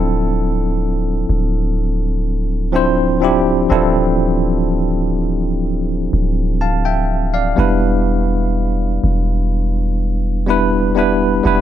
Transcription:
Already playing: 808-style bass D1, tine electric piano F3 C4 D4 E4 A4
1.29 808-style bass D1
2.72 tine electric piano F3 C4 D4 E4 C5
3.21 tine electric piano F3 C4 D4 E4 G4
3.69 808-style bass D1, tine electric piano E3 C4 D4 E4 A4
3.75 tine electric piano F3
6.13 808-style bass D1
6.61 tine electric piano F5 A5
6.85 tine electric piano E5 G5
7.34 tine electric piano D5 F5
7.56 808-style bass E1, tine electric piano G3 B3 D4 E4 B4
9.04 808-style bass E1
10.46 tine electric piano G3 B3 D4 E4 B4
10.95 tine electric piano G3 B3 D4 E4 B4
11.43 808-style bass E1, tine electric piano G3 B3 D4 E4 B4

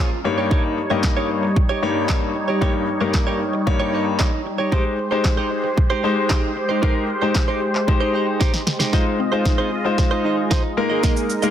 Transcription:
Already playing: supersaw synth F2 G#3 C#4 A#4, clean electric guitar F4
0.00 clean electric guitar G#4 C#5
0.11 muted clean electric guitar stroke
0.24 grand piano G2 A#3 D#4 G4 C#5, supersaw synth G3 D#4 C#5, muted clean electric guitar stroke
0.38 clean electric guitar D#4 G4 C#5
0.51 clean electric guitar D#4 G4 C#5, kick
0.64 muted clean electric guitar stroke
0.77 muted clean electric guitar stroke
0.90 grand piano G2 A#3 D#4 G4 D#5, clean electric guitar D#4 G4 C#5
1.03 kick, snare, clap
1.17 clean electric guitar D#4 G4 C#5
1.30 muted clean electric guitar stroke
1.43 muted clean electric guitar stroke
1.56 muted clean electric guitar stroke, kick
1.69 clean electric guitar D#4 G4 C#5
1.82 grand piano G2 A#3 D#4 G4 C#5, clean electric guitar D#4 G4 C#5
1.96 muted clean electric guitar stroke
2.08 clean electric guitar D#4 G4 C#5, kick, snare, clap
2.22 muted clean electric guitar stroke
2.35 muted clean electric guitar stroke
2.48 clean electric guitar D#4 G4 C#5
2.61 grand piano G2 A#3 D#4 G4 C#5, clean electric guitar D#4 G4 C#5, kick
2.74 muted clean electric guitar stroke
2.88 muted clean electric guitar stroke
3.01 grand piano G2 A#3 D#4 G4 A#4, clean electric guitar D#4 G4 C#5
3.14 kick, snare, clap
3.27 clean electric guitar D#4 G4 C#5
3.40 muted clean electric guitar stroke
3.54 muted clean electric guitar stroke
3.67 grand piano G2 A#3 D#4 G4 C#5, muted clean electric guitar stroke, kick
3.80 clean electric guitar D#4 G4 C#5
3.93 clean electric guitar D#4 G4 C#5
4.06 muted clean electric guitar stroke
4.19 clean electric guitar D#4 G4 C#5, kick, snare, clap
4.32 muted clean electric guitar stroke
4.45 muted clean electric guitar stroke
4.58 clean electric guitar D#4 G4 C#5
4.72 grand piano G#3 D#4 G4 C5, supersaw synth G#3 G4 C5, clean electric guitar D#4 G4 C5, kick
4.85 muted clean electric guitar stroke
4.98 muted clean electric guitar stroke
5.11 grand piano G#3 D#4 G4 C5, clean electric guitar D#4 G4 C5
5.24 kick, snare, clap
5.37 clean electric guitar D#4 G4 C5
5.51 muted clean electric guitar stroke
5.64 muted clean electric guitar stroke
5.77 muted clean electric guitar stroke, kick
5.90 clean electric guitar D#4 G4 C5
6.03 grand piano G#3 D#4 G4 C5, clean electric guitar D#4 G4 C5
6.16 muted clean electric guitar stroke
6.29 clean electric guitar D#4 G4 C5, kick, snare, clap
6.43 muted clean electric guitar stroke
6.56 muted clean electric guitar stroke
6.69 clean electric guitar D#4 G4 C5
6.82 grand piano G#3 D#4 G4 A#4, clean electric guitar D#4 G4 C5, kick
6.95 muted clean electric guitar stroke
7.09 muted clean electric guitar stroke
7.22 grand piano G#3 D#4 G4 C5, clean electric guitar D#4 G4 C5
7.35 muted clean electric guitar stroke, kick, snare, clap
7.48 clean electric guitar D#4 G4 C5
7.61 muted clean electric guitar stroke
7.74 muted clean electric guitar stroke, clap
7.87 grand piano G#3 D#4 G4 C5, muted clean electric guitar stroke, kick
8.00 clean electric guitar D#4 G4 C5
8.14 clean electric guitar D#4 G4 C5
8.27 muted clean electric guitar stroke
8.40 clean electric guitar D#4 G4 C5, kick, snare
8.53 muted clean electric guitar stroke, snare
8.66 muted clean electric guitar stroke, snare
8.79 clean electric guitar D#4 G4 C5, snare
8.92 grand piano G#3 D#4 F4 C5, supersaw synth G#3 F4 D#5, clean electric guitar D#4 G#4 C5, synth arpeggio sound F4, kick, snare
9.06 muted clean electric guitar stroke
9.19 synth arpeggio sound C4, muted clean electric guitar stroke
9.32 grand piano G#3 D#4 F4 C5, clean electric guitar D#4 G#4 C5
9.45 synth arpeggio sound D#4, muted clean electric guitar stroke, kick, snare
9.58 synth arpeggio sound C4, clean electric guitar D#4 G#4 C5
9.72 muted clean electric guitar stroke
9.85 grand piano G#3 D#4 F4 C5, muted clean electric guitar stroke
9.98 muted clean electric guitar stroke, kick, snare
10.11 clean electric guitar D#4 G#4 C5
10.24 clean electric guitar D#4 G#4 C5, synth arpeggio sound D#4
10.37 muted clean electric guitar stroke
10.50 clean electric guitar D#4 G#4 C5, synth arpeggio sound F4, kick, snare
10.64 muted clean electric guitar stroke
10.77 grand piano G#3 A#3 D#4 A#4, synth arpeggio sound G#3, supersaw synth D#4 A#4, muted clean electric guitar stroke
10.90 synth arpeggio sound D#4, clean electric guitar G#4 A#4 D#5
11.03 synth arpeggio sound A#3, clean electric guitar G#4 A#4 D#5, kick, snare, shaker
11.16 muted clean electric guitar stroke, shaker
11.29 muted clean electric guitar stroke, shaker
11.42 grand piano G#3 A#3 D#4 A#4, clean electric guitar G#4 A#4 D#5, shaker

